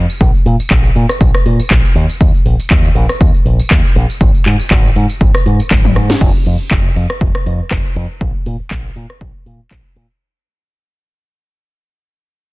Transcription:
0.10 tambourine medium
0.21 0.30 A#1 loud
0.21 kick loud
0.21 tambourine medium
0.35 tambourine soft
0.46 0.55 A#2 medium
0.46 open hi-hat loud
0.59 muted fingered electric bass stroke soft
0.59 tambourine medium
0.70 0.88 A#1 loud
0.70 kick loud
0.70 clap loud
0.70 tambourine medium
0.85 tambourine soft
0.96 1.05 A#2 loud
0.96 open hi-hat loud
1.09 cross-stick medium
1.09 tambourine medium
1.21 1.30 A#1 loud
1.21 kick loud
1.21 tambourine medium
1.35 cross-stick medium
1.35 tambourine soft
1.46 1.59 A#2 medium
1.46 open hi-hat loud
1.60 muted fingered electric bass stroke soft
1.60 tambourine medium
1.71 1.80 A#1 medium
1.71 kick loud
1.71 clap loud
1.71 tambourine medium
1.85 tambourine soft
1.95 2.05 D#2 loud
1.95 open hi-hat loud
2.10 tambourine medium
2.21 2.30 D#2 loud
2.21 kick loud
2.21 tambourine medium
2.35 tambourine soft
2.45 2.55 A#1 medium
2.45 open hi-hat loud
2.59 muted fingered electric bass stroke soft
2.59 tambourine medium
2.70 2.88 D#2 loud
2.70 kick loud
2.70 clap loud
2.70 tambourine medium
2.85 tambourine soft
2.95 3.05 A#1 loud
2.95 open hi-hat loud
3.09 cross-stick medium
3.09 tambourine medium
3.21 3.30 D#2 loud
3.21 kick loud
3.21 tambourine medium
3.35 tambourine soft
3.45 3.59 A#1 medium
3.45 open hi-hat loud
3.59 muted fingered electric bass stroke soft
3.59 tambourine medium
3.71 3.80 D#2 medium
3.71 kick loud
3.71 clap loud
3.71 tambourine medium
3.85 tambourine soft
3.96 4.05 A#1 loud
3.96 open hi-hat loud
4.10 tambourine medium
4.21 4.30 G#1 loud
4.21 kick loud
4.21 tambourine medium
4.35 tambourine soft
4.46 4.55 G#2 medium
4.46 clap medium
4.46 open hi-hat loud
4.60 muted fingered electric bass stroke soft
4.60 tambourine medium
4.71 4.88 G#1 loud
4.71 kick loud
4.71 clap loud
4.85 tambourine soft
4.96 5.05 G#2 loud
4.96 open hi-hat loud
5.10 tambourine medium
5.21 5.30 G#1 loud
5.21 kick loud
5.21 tambourine medium
5.35 cross-stick medium
5.35 tambourine soft
5.46 5.59 G#2 medium
5.46 open hi-hat loud
5.59 muted fingered electric bass stroke soft
5.59 tambourine medium
5.71 5.97 G#1 loud
5.71 kick loud
5.71 clap loud
5.71 high tom medium
5.71 tambourine medium
5.85 high tom medium
5.85 tambourine soft
5.96 6.13 G#2 loud
5.96 cross-stick medium
5.96 open hi-hat loud
6.10 snare medium
6.10 tambourine medium
6.21 6.30 F1 loud
6.21 kick loud
6.21 crash medium
6.46 6.55 F2 medium
6.46 open hi-hat loud
6.60 muted fingered electric bass stroke soft
6.71 6.88 F1 medium
6.71 kick loud
6.71 clap loud
6.96 7.05 F2 medium
6.96 open hi-hat loud
7.10 cross-stick medium
7.21 7.30 F1 loud
7.21 kick loud
7.35 cross-stick medium
7.46 7.59 F2 medium
7.46 open hi-hat loud
7.60 muted fingered electric bass stroke soft
7.71 7.80 F1 medium
7.71 kick loud
7.71 cross-stick medium
7.71 clap loud
7.96 8.05 F2 loud
7.96 open hi-hat medium
8.21 8.30 A#1 medium
8.21 kick loud
8.46 8.55 A#2 medium
8.46 open hi-hat loud
8.60 muted fingered electric bass stroke soft
8.71 8.88 A#1 medium
8.71 kick loud
8.71 clap loud
8.96 9.05 A#2 medium
8.96 open hi-hat loud
9.10 cross-stick medium
9.21 9.30 A#1 medium
9.21 kick loud
9.46 9.59 A#2 medium
9.46 open hi-hat loud
9.60 muted fingered electric bass stroke soft
9.71 9.80 A#1 medium
9.71 kick loud
9.71 clap loud
9.96 10.05 A#2 medium
9.96 open hi-hat loud

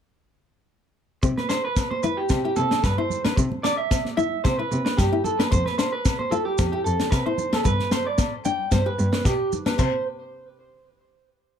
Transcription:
1.23 1.31 C3 medium
1.23 1.40 C4 medium
1.23 muted clean electric guitar stroke loud
1.23 kick medium
1.23 low conga medium
1.23 maracas medium
1.38 1.48 B4 medium
1.38 snare soft
1.38 high conga medium
1.49 1.67 D4 medium
1.49 1.63 C5 medium
1.49 snare medium
1.49 low agogo medium
1.49 maracas medium
1.65 1.90 B4 medium
1.76 1.93 C4 medium
1.76 kick medium
1.76 snare medium
1.76 low agogo medium
1.76 maracas medium
1.91 2.03 C5 medium
1.91 high conga medium
2.03 2.20 E4 medium
2.03 2.17 B4 medium
2.03 low conga medium
2.03 maracas medium
2.17 2.43 G4 medium
2.29 2.38 C3 medium
2.29 2.40 C4 medium
2.29 kick medium
2.29 snare medium
2.29 low agogo medium
2.29 maracas medium
2.45 2.61 E4 medium
2.45 2.56 G4 medium
2.56 2.65 C3 medium
2.56 2.82 A4 medium
2.56 high conga medium
2.56 maracas medium
2.71 2.88 D4 medium
2.71 snare medium
2.84 2.92 G2 medium
2.84 2.98 B4 medium
2.84 kick medium
2.84 snare medium
2.84 low agogo medium
2.84 maracas medium
2.98 3.14 E4 medium
2.98 3.24 C5 medium
2.98 high conga medium
3.10 low conga medium
3.10 maracas medium
3.25 3.33 D4 medium
3.25 3.36 B4 medium
3.25 snare medium
3.25 high conga medium
3.25 low agogo medium
3.37 3.46 C3 medium
3.37 3.54 C4 medium
3.37 muted clean electric guitar stroke loud
3.37 kick medium
3.37 low conga medium
3.37 maracas medium
3.52 high conga medium
3.63 3.80 D4 medium
3.63 3.77 D5 medium
3.63 snare medium
3.63 low agogo medium
3.63 maracas medium
3.77 4.03 E5 medium
3.91 4.08 C4 medium
3.91 kick medium
3.91 snare medium
3.91 low agogo medium
3.91 maracas loud
4.05 snare soft
4.05 high conga medium
4.17 4.34 E4 medium
4.17 4.43 E5 medium
4.17 low conga medium
4.17 maracas medium
4.44 4.53 C3 medium
4.44 4.53 C4 medium
4.44 4.58 C5 medium
4.44 kick medium
4.44 snare medium
4.44 low agogo medium
4.44 maracas medium
4.59 4.75 E4 medium
4.59 4.84 B4 medium
4.72 4.80 C3 medium
4.72 high conga medium
4.72 maracas medium
4.85 5.02 D4 medium
4.85 4.97 B4 medium
4.85 snare medium
4.97 5.06 G2 medium
4.97 5.23 G4 medium
4.97 kick medium
4.97 snare medium
4.97 low agogo medium
4.97 maracas medium
5.12 5.29 E4 medium
5.12 high conga medium
5.24 5.38 A4 medium
5.24 low conga medium
5.24 maracas medium
5.39 5.47 D4 medium
5.39 5.51 B4 medium
5.39 snare medium
5.39 high conga medium
5.39 low agogo medium
5.51 5.61 F2 medium
5.51 5.65 C5 medium
5.51 muted nylon-string guitar stroke loud
5.51 kick medium
5.51 low conga soft
5.51 maracas medium
5.66 5.78 B4 medium
5.66 snare soft
5.66 high conga medium
5.78 5.95 D4 medium
5.78 5.92 C5 medium
5.78 snare medium
5.78 low agogo medium
5.78 maracas medium
5.92 6.18 B4 medium
6.05 6.22 C4 medium
6.05 kick medium
6.05 snare medium
6.05 low agogo medium
6.05 maracas medium
6.19 6.31 C5 medium
6.19 high conga medium
6.31 6.48 F4 medium
6.31 6.45 A4 medium
6.31 low conga medium
6.31 maracas medium
6.45 6.71 G4 medium
6.58 6.67 F2 medium
6.58 6.67 C4 medium
6.58 kick medium
6.58 snare medium
6.58 low agogo medium
6.58 maracas loud
6.72 6.89 E4 medium
6.72 6.84 G4 medium
6.84 6.94 F2 medium
6.84 7.10 A4 medium
6.84 maracas medium
7.00 7.16 D4 medium
7.00 snare medium
7.11 7.20 C3 medium
7.11 7.25 B4 medium
7.11 kick medium
7.11 snare medium
7.11 low agogo medium
7.11 maracas medium
7.26 7.43 E4 medium
7.26 7.52 C5 medium
7.26 high conga medium
7.38 low conga medium
7.38 maracas medium
7.53 7.65 A4 medium
7.53 muted nylon-string guitar stroke medium
7.53 snare medium
7.53 high conga medium
7.53 low agogo medium
7.64 7.73 G2 medium
7.64 7.81 B3 medium
7.64 7.91 B4 loud
7.64 kick medium
7.64 low conga soft
7.64 maracas medium
7.80 snare soft
7.80 high conga medium
7.91 8.08 C4 medium
7.91 8.06 C5 medium
7.91 snare medium
7.91 low conga medium
7.91 low agogo medium
7.91 maracas medium
8.07 8.32 D5 medium
8.18 8.35 B3 medium
8.18 kick medium
8.18 snare medium
8.18 low agogo medium
8.18 maracas loud
8.45 8.62 D4 medium
8.45 8.71 G5 medium
8.45 low conga medium
8.45 maracas medium
8.72 8.80 G2 loud
8.72 8.81 B3 medium
8.72 8.86 C5 medium
8.72 kick medium
8.72 snare medium
8.72 low agogo medium
8.72 maracas medium
8.86 9.02 G4 medium
8.86 9.11 B4 medium
8.99 9.07 G2 medium
8.99 high conga medium
8.99 maracas medium
9.12 9.29 D4 medium
9.12 9.25 B4 medium
9.12 snare medium
9.25 9.33 B2 loud
9.25 9.51 G4 medium
9.25 kick medium
9.25 snare medium
9.25 low agogo medium
9.25 maracas medium
9.52 low conga medium
9.52 maracas medium
9.66 9.74 D4 medium
9.66 9.78 B4 medium
9.66 snare medium
9.66 high conga medium
9.66 low agogo medium
9.78 9.87 C3 medium
9.78 9.94 C4 medium
9.78 10.04 C5 medium
9.78 kick medium
9.78 china medium
9.78 high conga medium
9.78 low agogo loud
9.78 maracas medium

